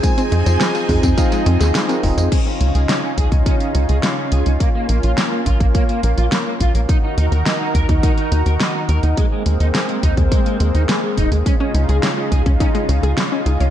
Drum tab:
CC |----------------|x---------------|----------------|----------------|
HH |xxxxxxoxxxxxxxox|x-xxx-xxxxxxx-xx|x-xxx-xxxxxxx-xx|x-xxx-xxxxxxx-xx|
TB |xx-xxx-xxx-xxx-x|----------------|----------------|----------------|
SD |----o------oo---|----o-------o---|----o-------o---|----o-------o---|
BD |o-----ooo-----o-|o-----ooo-------|o-----ooo-----o-|o-----ooo-------|

CC |----------------|----------------|
HH |x-xxxxxxxxxxx-xx|x-xxx-xxxxxxx-xx|
TB |----------------|----------------|
SD |----o-------o---|----o-------o---|
BD |o-----ooo-----o-|o-----ooo-------|